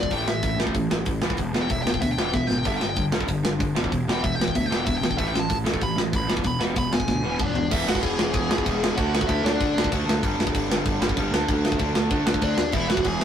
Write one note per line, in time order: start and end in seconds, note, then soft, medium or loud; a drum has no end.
0.00 0.10 B2 medium
0.00 0.11 D5 medium
0.00 kick medium
0.11 0.24 A1 medium
0.11 0.27 A2 medium
0.11 0.26 E3 medium
0.11 0.27 A3 medium
0.11 0.28 G5 medium
0.11 kick medium
0.11 open hi-hat medium
0.26 0.39 A1 medium
0.26 0.42 A2 medium
0.26 0.42 E3 medium
0.26 0.58 E5 loud
0.26 snare medium
0.43 0.56 A1 medium
0.43 0.58 A2 medium
0.43 0.58 E3 medium
0.43 kick loud
0.43 open hi-hat medium
0.57 0.71 A1 medium
0.57 0.74 A2 medium
0.57 0.75 E3 loud
0.57 0.75 A3 medium
0.57 snare loud
0.67 kick medium
0.74 0.88 A1 medium
0.74 0.89 A2 medium
0.74 0.90 E3 medium
0.74 kick medium
0.74 open hi-hat soft
0.90 1.03 A1 medium
0.90 1.05 A2 medium
0.90 1.06 E3 medium
0.90 snare loud
1.05 1.19 A1 medium
1.05 1.21 A2 medium
1.05 1.21 E3 medium
1.05 kick loud
1.05 open hi-hat medium
1.22 1.35 E1 medium
1.22 1.37 E2 medium
1.22 1.38 B2 medium
1.22 1.38 E3 medium
1.22 snare loud
1.30 kick medium
1.37 1.51 E1 medium
1.37 1.53 E2 medium
1.37 1.53 B2 medium
1.37 kick medium
1.37 open hi-hat soft
1.54 1.67 E1 medium
1.54 1.69 E2 medium
1.54 1.70 B2 loud
1.54 1.70 E3 loud
1.54 snare medium
1.62 1.71 G5 medium
1.70 1.83 E1 medium
1.70 1.84 E2 medium
1.70 1.85 B2 medium
1.70 1.81 E5 medium
1.70 kick loud
1.70 open hi-hat medium
1.83 1.99 E1 medium
1.83 1.90 G5 medium
1.87 2.01 E2 medium
1.87 2.01 B2 medium
1.87 snare loud
1.91 2.01 G5 medium
1.91 kick medium
2.01 2.15 D2 medium
2.01 2.16 E2 medium
2.01 2.17 B2 medium
2.01 2.12 E5 medium
2.01 kick medium
2.01 open hi-hat medium
2.12 2.21 G5 medium
2.17 2.31 E1 medium
2.17 2.31 E2 medium
2.17 2.32 B2 medium
2.17 2.33 E3 medium
2.17 snare loud
2.22 2.34 G5 medium
2.32 2.46 E1 medium
2.32 2.47 E2 medium
2.32 2.48 B2 medium
2.32 2.47 E5 medium
2.32 kick loud
2.32 snare medium
2.47 2.62 G#1 medium
2.47 2.64 E2 medium
2.47 2.64 B2 medium
2.47 2.56 G5 medium
2.47 snare medium
2.58 2.67 G5 medium
2.65 2.78 G1 medium
2.65 2.81 G2 medium
2.65 2.80 D3 medium
2.65 2.81 G3 medium
2.65 2.77 E5 loud
2.65 kick loud
2.65 open hi-hat medium
2.77 2.87 G5 medium
2.77 snare medium
2.82 2.95 G1 medium
2.82 2.96 G2 medium
2.82 2.96 D3 medium
2.89 3.03 G5 loud
2.96 3.10 G1 medium
2.96 3.11 G2 medium
2.96 3.11 D3 medium
2.96 kick loud
2.96 open hi-hat medium
3.12 3.26 G1 medium
3.12 3.27 G2 medium
3.12 3.28 D3 medium
3.12 3.28 G3 medium
3.12 snare loud
3.21 kick medium
3.28 3.41 G1 medium
3.28 3.43 G2 medium
3.28 3.43 D3 medium
3.28 kick medium
3.28 open hi-hat medium
3.44 3.58 G1 medium
3.44 3.59 G2 medium
3.44 3.59 D3 medium
3.44 snare loud
3.60 3.73 G1 medium
3.60 3.75 G2 medium
3.60 3.75 D3 medium
3.60 kick loud
3.60 open hi-hat medium
3.75 3.89 E1 medium
3.75 3.91 E2 medium
3.75 3.91 B2 medium
3.75 3.91 E3 medium
3.75 snare loud
3.84 kick medium
3.92 4.05 E1 medium
3.92 4.07 E2 medium
3.92 4.07 B2 medium
3.92 kick medium
3.92 open hi-hat medium
4.07 4.20 E1 medium
4.07 4.23 E2 medium
4.07 4.23 B2 medium
4.07 4.23 E3 loud
4.07 snare loud
4.13 4.23 G5 loud
4.24 4.37 E1 medium
4.24 4.38 E2 medium
4.24 4.38 B2 medium
4.24 4.35 E5 medium
4.24 kick loud
4.24 open hi-hat medium
4.35 4.52 E1 medium
4.35 4.54 E2 medium
4.35 4.43 G5 medium
4.39 4.54 B2 medium
4.39 snare loud
4.44 4.56 G5 medium
4.44 kick medium
4.55 4.68 D2 medium
4.55 4.68 E2 medium
4.55 4.69 B2 loud
4.55 4.66 E5 medium
4.55 kick medium
4.55 open hi-hat medium
4.66 4.85 E2 medium
4.66 4.76 G5 medium
4.70 4.83 E1 medium
4.70 4.85 B2 medium
4.70 4.86 E3 loud
4.70 snare loud
4.77 4.85 G5 medium
4.86 5.00 E1 medium
4.86 5.01 E2 medium
4.86 5.01 B2 medium
4.86 4.97 E5 medium
4.86 kick loud
4.86 open hi-hat medium
4.98 5.15 E1 medium
4.98 5.04 G5 medium
5.02 5.17 E2 medium
5.02 5.17 B2 medium
5.02 5.17 G5 medium
5.02 snare loud
5.11 kick medium
5.18 5.32 A1 medium
5.18 5.32 A2 medium
5.18 5.33 E3 medium
5.18 5.34 A3 medium
5.18 5.28 E5 loud
5.18 kick loud
5.18 open hi-hat medium
5.29 5.39 G5 loud
5.33 5.47 A1 medium
5.33 5.48 A2 medium
5.33 5.48 E3 medium
5.33 snare loud
5.39 5.55 A5 loud
5.50 5.63 A1 medium
5.50 5.64 A2 medium
5.50 5.64 E3 medium
5.50 kick loud
5.50 open hi-hat medium
5.65 5.79 A1 medium
5.65 5.79 A2 medium
5.65 5.80 E3 medium
5.65 5.81 A3 loud
5.65 snare loud
5.74 kick medium
5.81 5.94 A1 medium
5.81 5.95 A2 medium
5.81 5.96 E3 medium
5.81 5.98 B5 medium
5.81 kick loud
5.81 open hi-hat medium
5.96 6.10 A1 medium
5.96 6.11 A2 medium
5.96 6.11 E3 medium
5.96 snare loud
6.13 6.26 A1 medium
6.13 6.28 A2 medium
6.13 6.28 E3 medium
6.13 6.30 B5 loud
6.13 kick loud
6.13 open hi-hat medium
6.28 6.42 E1 medium
6.28 6.43 E2 medium
6.28 6.44 B2 medium
6.28 6.44 E3 medium
6.28 snare loud
6.37 kick medium
6.44 6.57 E1 medium
6.44 6.59 E2 medium
6.44 6.60 B2 medium
6.44 6.61 B5 loud
6.44 kick loud
6.44 open hi-hat medium
6.61 6.74 E1 medium
6.61 6.75 E2 medium
6.61 6.76 B2 medium
6.61 6.76 E3 loud
6.61 snare loud
6.76 6.89 E1 medium
6.76 6.91 E2 medium
6.76 6.91 B2 medium
6.76 6.93 B5 medium
6.76 kick loud
6.76 open hi-hat medium
6.92 7.05 E1 medium
6.92 7.07 E2 medium
6.92 7.07 B2 medium
6.92 7.54 G#5 loud
6.92 snare loud
7.00 kick medium
7.08 7.21 D2 medium
7.08 7.22 E2 medium
7.08 7.22 B2 medium
7.08 kick medium
7.08 snare medium
7.24 7.37 E1 medium
7.24 7.38 E2 medium
7.24 7.38 B2 medium
7.24 7.39 E3 loud
7.24 high tom medium
7.39 7.52 E1 medium
7.39 7.53 E2 medium
7.39 7.53 B2 medium
7.39 7.71 D4 medium
7.39 kick loud
7.39 mid tom medium
7.46 7.75 D5 medium
7.54 7.68 E1 medium
7.54 7.69 E2 medium
7.54 7.69 B2 medium
7.54 floor tom medium
7.70 7.83 E1 loud
7.70 8.17 E2 medium
7.70 8.17 B2 medium
7.70 8.17 E3 medium
7.70 7.86 E4 medium
7.70 7.87 E5 loud
7.70 kick loud
7.70 crash loud
7.70 crash medium
7.86 7.98 E1 medium
7.86 8.00 F#4 medium
7.86 8.02 F#5 loud
7.86 snare loud
7.95 kick medium
8.01 8.14 E1 medium
8.01 8.31 G#4 medium
8.01 8.33 G#5 loud
8.01 kick loud
8.01 crash medium
8.18 8.29 E1 medium
8.18 8.63 E2 medium
8.18 8.65 B2 medium
8.18 8.64 E3 medium
8.18 snare loud
8.34 8.45 E1 medium
8.34 8.93 G#4 medium
8.34 8.97 G#5 medium
8.34 kick loud
8.34 crash medium
8.49 8.61 E1 medium
8.49 8.63 E2 medium
8.49 8.65 B2 medium
8.49 8.64 E3 medium
8.49 snare loud
8.58 kick medium
8.64 8.89 E1 loud
8.64 8.95 E2 medium
8.64 8.96 B2 medium
8.64 8.96 E3 medium
8.64 kick loud
8.64 crash medium
8.84 snare loud
8.96 9.20 D2 loud
8.96 9.43 D3 medium
8.96 9.43 A3 loud
8.96 9.43 D4 medium
8.96 9.26 F#4 medium
8.96 9.27 F#5 loud
8.96 kick loud
8.96 crash medium
9.15 snare loud
9.21 kick loud
9.27 9.40 D2 medium
9.27 9.42 E4 medium
9.27 9.44 E5 medium
9.27 kick loud
9.27 crash medium
9.44 9.55 D2 loud
9.44 9.91 D3 medium
9.44 9.91 A3 medium
9.44 9.94 D4 loud
9.44 9.88 D4 medium
9.44 9.88 D5 medium
9.44 snare loud
9.61 9.72 D3 medium
9.61 kick loud
9.61 crash medium
9.74 9.87 D2 medium
9.74 9.89 D3 medium
9.74 9.90 A3 medium
9.74 9.92 D4 medium
9.74 snare loud
9.84 kick medium
9.92 10.03 D2 loud
9.92 10.22 D3 medium
9.92 10.22 A3 medium
9.92 11.34 D4 loud
9.92 kick loud
9.92 crash medium
10.06 10.18 D2 medium
10.06 snare loud
10.23 10.34 G1 loud
10.23 10.69 G2 medium
10.23 10.69 D3 medium
10.23 10.68 G3 medium
10.23 kick loud
10.23 crash medium
10.38 10.49 G1 medium
10.38 snare loud
10.47 kick loud
10.55 10.66 G1 medium
10.55 kick loud
10.55 crash medium
10.69 10.80 G1 loud
10.69 11.16 G2 medium
10.69 11.16 D3 medium
10.69 11.16 G3 medium
10.69 snare loud
10.86 10.97 G1 medium
10.86 kick loud
10.86 crash medium
11.00 11.11 G1 medium
11.00 11.15 G2 medium
11.00 11.16 D3 medium
11.00 11.15 G3 medium
11.00 snare loud
11.09 kick medium
11.17 11.28 G1 medium
11.17 11.31 G2 medium
11.17 11.32 D3 medium
11.17 11.32 G3 medium
11.17 kick loud
11.17 crash medium
11.31 11.43 D2 medium
11.31 11.78 D3 medium
11.31 11.79 A3 medium
11.31 snare loud
11.35 11.80 D4 loud
11.48 11.71 D2 loud
11.48 kick loud
11.48 crash medium
11.65 snare loud
11.72 kick loud
11.79 11.91 D2 medium
11.79 12.25 D3 medium
11.79 12.26 A3 medium
11.79 12.25 D4 loud
11.79 kick loud
11.79 crash medium
11.94 12.06 D2 medium
11.94 snare loud
12.10 12.25 D3 medium
12.10 12.22 D3 medium
12.10 12.26 A3 medium
12.10 12.25 D4 medium
12.10 kick loud
12.10 crash medium
12.26 12.38 D2 medium
12.26 12.57 D3 medium
12.26 12.57 A3 medium
12.26 12.57 D4 medium
12.26 snare loud
12.34 kick medium
12.41 12.53 D2 medium
12.41 12.72 D4 medium
12.41 12.75 D5 medium
12.41 kick loud
12.41 crash medium
12.57 12.69 D#2 medium
12.57 snare loud
12.72 12.85 E1 loud
12.72 13.20 E2 medium
12.72 13.20 B2 medium
12.72 13.20 E3 loud
12.72 12.88 E4 medium
12.72 12.88 E5 loud
12.72 kick loud
12.72 crash medium
12.88 13.00 E1 medium
12.88 13.04 F#4 medium
12.88 13.05 F#5 loud
12.88 snare loud
12.97 kick loud
13.04 13.16 E1 medium
13.04 13.24 G#4 medium
13.04 13.24 G#5 medium
13.04 kick medium
13.04 crash medium
13.20 13.24 E1 medium
13.20 13.24 E3 medium